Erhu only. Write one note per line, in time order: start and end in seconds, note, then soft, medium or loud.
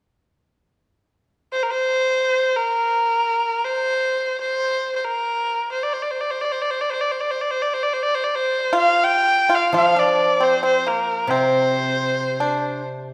1.53 1.65 C5 medium
1.63 1.73 A#4 medium
1.71 2.57 C5 medium
2.56 3.66 A#4 medium
3.65 4.40 C5 medium
4.41 4.93 C5 medium
4.96 5.06 C5 soft
5.04 5.71 A#4 medium
5.72 5.84 C5 medium
5.83 5.94 D5 medium
5.93 6.04 C5 medium
6.02 6.12 D5 medium
6.11 6.22 C5 medium
6.21 6.32 D5 medium
6.31 6.43 C5 medium
6.41 6.53 D5 medium
6.52 6.63 C5 medium
6.61 6.72 D5 medium
6.70 6.82 C5 medium
6.81 6.91 D5 medium
6.90 7.02 C5 medium
7.01 7.13 D5 medium
7.11 7.22 C5 medium
7.20 7.33 D5 medium
7.31 7.43 C5 medium
7.41 7.52 D5 medium
7.51 7.63 C5 medium
7.62 7.75 D5 medium
7.73 7.84 C5 medium
7.83 7.95 D5 medium
7.93 8.04 C5 medium
8.03 8.16 D5 medium
8.15 8.25 C5 medium
8.24 8.36 D5 medium
8.34 8.74 C5 medium
8.77 9.05 F5 medium
9.04 9.56 G5 medium
9.54 9.75 F5 medium
9.76 10.00 F5 medium
9.99 10.44 D5 medium
10.43 10.64 C5 medium
10.65 10.89 C5 medium
10.87 11.32 A#4 medium
11.30 12.85 C5 medium